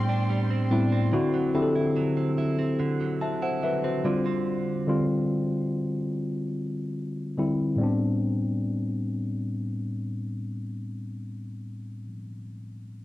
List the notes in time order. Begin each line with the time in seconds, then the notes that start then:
Already playing: A2 G3 B3 C4 D4 G4 D5 G5 C6
0.09 D4
0.30 G3
0.50 C4
0.71 A2 G3 B3 C4 D4 E4
0.92 C4
1.12 D3 C4 E4 F#4
1.34 F#3
1.54 D3 C4 E4 G4
1.62 A4
1.76 E4
1.96 F#3
2.17 C4
2.38 E4
2.59 C4
2.79 D3
3.00 F#3
3.21 C4 E5 A5
3.42 E4 C5 F#5
3.63 F#3 B4 E5
3.84 C4 F#4 C5
4.04 D3 G3 C4 F4
4.26 C4
4.87 D3 G3 C4 F4
7.38 D3 G3 C4 E4
7.76 A2 G3 B3
7.81 C4 D4